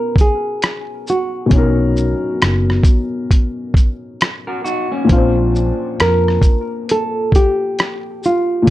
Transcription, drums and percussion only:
0.16 kick loud
0.16 closed hi-hat soft
0.16 shaker soft
0.62 cross-stick loud
0.62 closed hi-hat medium
1.07 shaker soft
1.51 kick loud
1.51 closed hi-hat medium
1.97 shaker soft
2.42 cross-stick medium
2.42 closed hi-hat medium
2.70 cross-stick soft
2.83 kick loud
2.83 closed hi-hat medium
2.83 shaker medium
3.31 kick medium
3.31 closed hi-hat medium
3.74 kick medium
3.74 closed hi-hat soft
3.74 shaker soft
4.21 cross-stick loud
4.21 closed hi-hat medium
4.66 shaker soft
5.09 kick medium
5.09 closed hi-hat medium
5.55 shaker soft
6.00 cross-stick loud
6.00 closed hi-hat medium
6.28 cross-stick soft
6.42 kick medium
6.42 closed hi-hat medium
6.42 shaker medium
6.89 closed hi-hat medium
7.32 kick medium
7.32 closed hi-hat soft
7.32 shaker soft
7.79 cross-stick medium
7.79 closed hi-hat medium
8.23 shaker soft

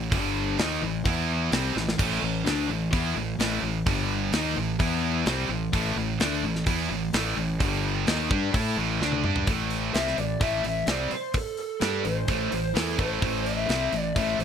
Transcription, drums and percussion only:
0.12 kick loud
0.12 open hi-hat medium
0.58 snare loud
0.58 open hi-hat medium
1.05 kick loud
1.05 open hi-hat medium
1.52 snare loud
1.52 open hi-hat medium
1.77 snare medium
1.89 snare medium
1.99 kick loud
1.99 open hi-hat medium
1.99 crash loud
2.46 snare loud
2.46 open hi-hat medium
2.93 kick loud
2.93 open hi-hat medium
3.40 snare loud
3.40 open hi-hat medium
3.87 kick loud
3.87 open hi-hat medium
4.33 snare loud
4.33 open hi-hat medium
4.80 kick loud
4.80 open hi-hat medium
5.26 snare loud
5.26 open hi-hat medium
5.73 kick loud
5.73 open hi-hat medium
6.20 snare loud
6.20 open hi-hat soft
6.55 snare soft
6.66 kick medium
6.66 open hi-hat medium
7.13 snare loud
7.13 open hi-hat medium
7.60 kick loud
7.60 open hi-hat medium
8.07 snare loud
8.07 open hi-hat medium
8.31 kick loud
8.54 kick loud
8.54 open hi-hat medium
9.02 snare medium
9.12 high tom medium
9.24 mid tom medium
9.36 floor tom medium
9.47 kick loud
9.47 open hi-hat medium
9.70 open hi-hat medium
9.94 snare medium
9.94 open hi-hat medium
10.08 snare soft
10.18 open hi-hat soft
10.41 kick loud
10.41 open hi-hat medium
10.64 open hi-hat medium
10.87 snare loud
10.87 open hi-hat medium
11.11 open hi-hat medium
11.34 kick loud
11.34 open hi-hat medium
11.57 open hi-hat medium
11.81 snare loud
11.81 open hi-hat medium
12.05 open hi-hat medium
12.28 kick medium
12.28 open hi-hat medium
12.52 open hi-hat medium
12.76 snare loud
12.76 open hi-hat medium
12.99 kick loud
12.99 open hi-hat soft
13.22 kick loud
13.22 open hi-hat medium
13.46 open hi-hat medium
13.69 snare medium
13.69 open hi-hat medium
13.93 open hi-hat soft
14.16 kick loud
14.16 open hi-hat medium
14.40 open hi-hat medium

